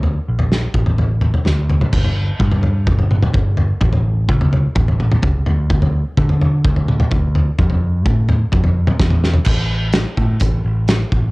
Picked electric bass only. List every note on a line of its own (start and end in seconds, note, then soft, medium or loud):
0.00 0.17 D2 medium
0.28 0.66 A#1 medium
0.74 1.31 A1 medium
1.46 1.83 D2 loud
1.93 2.30 G1 loud
2.39 2.89 G2 medium
2.87 3.25 G1 medium
3.34 3.72 G1 loud
3.81 4.28 A1 loud
4.28 4.66 C#2 medium
4.76 5.14 A1 medium
5.23 5.42 C#2 medium
5.47 6.03 D2 medium
6.18 6.66 D3 medium
6.65 7.03 D2 medium
7.11 7.49 D2 loud
7.59 8.06 F2 loud
8.06 8.44 A2 medium
8.53 8.90 F2 medium
9.00 9.38 E2 loud
9.47 10.03 A1 loud
10.17 10.36 A2 medium
10.42 10.60 A1 loud
10.65 11.02 A1 medium
11.12 11.31 A1 medium